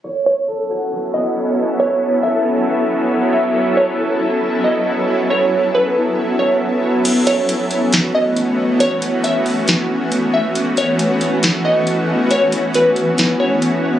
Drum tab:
CC |--------|--------|--------|--------|
HH |--------|--------|--------|--------|
SD |--------|--------|--------|--------|

CC |x-------|--------|--------|--------|
HH |xxxxx-x-|xxxox-x-|xxxxx-x-|xxxxx-x-|
SD |----o---|----o---|----o---|----o---|